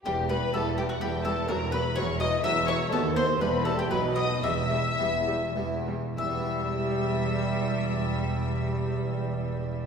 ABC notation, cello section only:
X:1
M:3/4
L:1/8
Q:1/4=112
K:Em
V:1 name="Cello section" clef=bass
E,,2 E,,2 E,,2 | E,,2 E,,2 E,,2 | ^D,,2 E,,2 B,,2 | E,,2 E,,2 E,,2 |
E,,6- | E,,6 |]